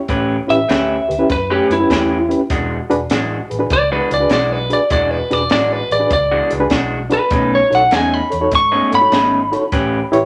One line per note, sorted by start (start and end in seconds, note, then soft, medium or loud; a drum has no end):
0.08 0.38 A1 medium
0.08 0.35 A3 medium
0.08 0.36 C#4 medium
0.08 0.36 G4 medium
0.08 0.36 B4 loud
0.08 kick loud
0.08 closed hi-hat medium
0.47 0.63 A1 medium
0.47 0.58 C#4 medium
0.47 0.58 E4 medium
0.47 0.59 G4 medium
0.47 0.59 B4 medium
0.47 1.28 E5 loud
0.47 closed hi-hat medium
0.69 0.99 D2 medium
0.69 0.95 A3 medium
0.69 0.96 C#4 medium
0.69 0.96 G4 medium
0.69 0.96 B4 medium
0.69 snare loud
0.69 closed hi-hat medium
1.08 1.24 D2 medium
1.08 1.14 G4 medium
1.08 1.14 B4 medium
1.08 closed hi-hat medium
1.18 1.29 C#4 medium
1.18 1.29 E4 medium
1.18 1.29 G4 medium
1.18 1.29 B4 medium
1.30 1.59 F#2 medium
1.30 1.50 B4 medium
1.30 muted clean electric guitar stroke soft
1.30 kick loud
1.30 snare soft
1.30 closed hi-hat medium
1.50 1.74 A3 medium
1.50 1.74 C#4 medium
1.50 1.74 G4 medium
1.50 1.70 G4 medium
1.50 1.73 B4 loud
1.69 1.84 F#2 medium
1.69 2.29 E4 medium
1.69 1.75 G4 medium
1.69 1.75 B4 medium
1.69 closed hi-hat medium
1.80 1.90 C#4 medium
1.80 1.90 E4 medium
1.80 1.90 G4 medium
1.80 1.90 B4 medium
1.90 2.33 E2 medium
1.90 2.16 A3 medium
1.90 2.17 C#4 medium
1.90 2.17 G4 medium
1.90 2.17 B4 medium
1.90 kick medium
1.90 snare loud
1.90 closed hi-hat medium
2.29 2.39 C#4 medium
2.29 2.40 E4 medium
2.29 2.40 G4 medium
2.29 2.40 B4 medium
2.29 closed hi-hat medium
2.50 2.79 E1 medium
2.50 2.77 E3 medium
2.50 2.77 G#3 medium
2.50 2.77 D4 medium
2.50 2.77 F#4 medium
2.50 kick loud
2.50 snare soft
2.50 closed hi-hat medium
2.90 3.05 E1 medium
2.90 3.00 D4 medium
2.90 3.00 F#4 medium
2.90 3.01 G#4 medium
2.90 3.00 B4 medium
2.90 closed hi-hat medium
3.10 3.39 A1 medium
3.10 3.37 E3 medium
3.10 3.37 G#3 medium
3.10 3.37 D4 medium
3.10 3.38 F#4 medium
3.10 snare loud
3.10 closed hi-hat medium
3.50 3.65 A1 medium
3.50 3.55 G#4 medium
3.50 3.56 B4 loud
3.50 closed hi-hat medium
3.59 3.70 D4 medium
3.59 3.70 F#4 medium
3.59 3.70 G#4 medium
3.59 3.70 B4 medium
3.70 3.99 C#2 loud
3.70 3.91 D5 loud
3.70 muted clean electric guitar stroke soft
3.70 kick loud
3.70 closed hi-hat medium
3.92 4.15 E3 medium
3.92 4.15 G#3 medium
3.92 4.15 D4 medium
3.92 4.15 F#4 loud
3.92 4.11 B4 medium
4.09 4.25 C#2 medium
4.09 4.15 G#4 medium
4.09 4.16 B4 medium
4.09 closed hi-hat medium
4.14 4.31 D5 medium
4.20 4.30 D4 medium
4.20 4.31 F#4 medium
4.20 4.31 G#4 medium
4.20 4.31 B4 medium
4.30 4.73 B1 medium
4.30 4.57 E3 medium
4.30 4.57 G#3 medium
4.30 4.58 D4 medium
4.30 4.58 F#4 medium
4.30 4.52 D5 medium
4.30 snare loud
4.30 closed hi-hat medium
4.52 4.71 B4 medium
4.69 4.80 D4 medium
4.69 4.80 F#4 medium
4.69 4.81 G#4 medium
4.69 4.81 B4 medium
4.69 closed hi-hat medium
4.73 4.91 D5 medium
4.90 5.20 E1 medium
4.90 5.17 E3 medium
4.90 5.18 G#3 medium
4.90 5.18 D4 medium
4.90 5.18 F#4 medium
4.90 5.11 D5 medium
4.90 kick loud
4.90 closed hi-hat medium
5.11 5.33 B4 medium
5.31 5.45 E1 medium
5.31 5.41 D4 medium
5.31 5.41 F#4 medium
5.31 5.41 G#4 medium
5.31 5.42 B4 medium
5.31 5.51 D5 medium
5.31 snare soft
5.31 closed hi-hat medium
5.50 5.80 A1 medium
5.50 5.77 E3 medium
5.50 5.78 G#3 medium
5.50 5.78 D4 medium
5.50 5.78 F#4 medium
5.50 5.73 D5 medium
5.50 snare loud
5.50 closed hi-hat medium
5.73 5.91 B4 medium
5.91 6.05 A1 medium
5.91 5.97 G#4 medium
5.91 5.97 B4 medium
5.91 6.11 D5 medium
5.91 closed hi-hat medium
6.00 6.10 D4 medium
6.00 6.11 F#4 medium
6.00 6.10 G#4 medium
6.00 6.11 B4 medium
6.10 6.40 C#2 medium
6.10 6.52 D5 medium
6.10 muted clean electric guitar stroke soft
6.10 kick loud
6.10 closed hi-hat medium
6.31 6.56 E3 medium
6.31 6.55 G#3 medium
6.31 6.55 D4 medium
6.31 6.55 F#4 medium
6.50 6.66 C#2 medium
6.50 6.56 G#4 medium
6.50 6.57 B4 medium
6.50 closed hi-hat medium
6.60 6.71 D4 medium
6.60 6.71 F#4 medium
6.60 6.71 G#4 medium
6.60 6.71 B4 medium
6.70 7.14 B1 medium
6.70 6.98 E3 medium
6.70 6.98 G#3 medium
6.70 6.98 D4 medium
6.70 6.98 F#4 medium
6.70 kick medium
6.70 snare loud
6.70 closed hi-hat medium
7.10 7.21 D4 medium
7.10 7.21 F#4 medium
7.10 7.22 G#4 medium
7.10 7.22 B4 medium
7.10 7.52 B4 loud
7.10 closed hi-hat medium
7.30 7.60 B1 medium
7.30 7.58 B2 medium
7.30 7.58 A3 medium
7.30 7.58 C#4 medium
7.30 7.59 D#4 medium
7.30 kick loud
7.30 closed hi-hat medium
7.55 7.73 C#5 medium
7.70 7.86 B1 medium
7.70 7.81 D#4 medium
7.70 7.81 F#4 medium
7.70 7.81 A4 medium
7.70 7.81 C#5 medium
7.70 snare soft
7.70 closed hi-hat medium
7.75 7.94 F#5 medium
7.91 8.21 E2 medium
7.91 8.18 B2 medium
7.91 8.18 A3 medium
7.91 8.18 C#4 medium
7.91 8.19 D#4 loud
7.91 8.14 G#5 medium
7.91 snare loud
7.91 closed hi-hat medium
8.14 8.52 B5 medium
8.30 8.47 E2 medium
8.30 8.36 A4 medium
8.30 8.37 C#5 medium
8.30 closed hi-hat medium
8.41 8.52 D#4 medium
8.41 8.51 F#4 medium
8.41 8.52 A4 medium
8.41 8.52 C#5 medium
8.52 8.81 G#2 medium
8.52 8.93 C#6 medium
8.52 muted clean electric guitar stroke soft
8.52 kick loud
8.52 snare soft
8.52 closed hi-hat medium
8.72 8.96 B2 medium
8.72 8.96 A3 medium
8.72 8.95 C#4 medium
8.72 8.95 D#4 medium
8.91 9.07 G#2 medium
8.91 8.97 A4 medium
8.91 8.97 C#5 medium
8.91 10.10 B5 loud
8.91 closed hi-hat medium
9.01 9.12 D#4 medium
9.01 9.12 F#4 medium
9.01 9.12 A4 medium
9.01 9.12 C#5 medium
9.12 9.55 G#1 medium
9.12 9.39 B2 medium
9.12 9.39 A3 medium
9.12 9.39 C#4 medium
9.12 9.39 D#4 medium
9.12 snare loud
9.12 closed hi-hat medium
9.52 9.62 D#4 medium
9.52 9.62 F#4 medium
9.52 9.63 A4 medium
9.52 9.63 C#5 medium
9.52 closed hi-hat medium
9.72 10.01 A1 medium
9.72 9.99 A3 medium
9.72 9.99 C#4 medium
9.72 9.99 G4 medium
9.72 9.99 B4 loud
9.72 kick loud
9.72 snare soft
9.72 closed hi-hat medium
10.12 10.25 A1 medium
10.12 10.22 E4 medium
10.12 10.22 G4 medium
10.12 10.23 B4 medium
10.12 10.23 C#5 loud
10.12 closed hi-hat medium